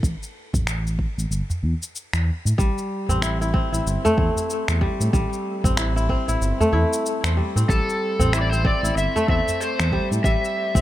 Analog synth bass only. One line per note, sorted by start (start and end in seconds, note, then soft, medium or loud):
0.03 0.15 A1 loud
0.54 1.06 A1 medium
1.18 1.26 A1 medium
1.31 1.42 G1 medium
1.63 1.74 E2 medium
2.13 2.31 E2 medium
2.45 2.53 A2 medium
2.59 2.70 A1 loud
3.09 3.61 A1 medium
3.73 3.81 A1 medium
3.86 3.98 G1 medium
4.18 4.29 E2 medium
4.68 4.86 E2 medium
5.00 5.08 A2 medium
5.13 5.25 A1 loud
5.64 6.17 A1 medium
6.28 6.36 A1 medium
6.41 6.53 G1 medium
6.73 6.85 E2 medium
7.24 7.41 E2 medium
7.56 7.64 A2 medium
7.69 7.81 A1 loud
8.19 8.72 A1 medium
8.83 8.91 A1 loud
8.96 9.08 G1 medium
9.29 9.40 E2 medium
9.79 9.97 E2 medium
10.11 10.19 A2 medium
10.24 10.36 A1 loud
10.75 10.81 A1 medium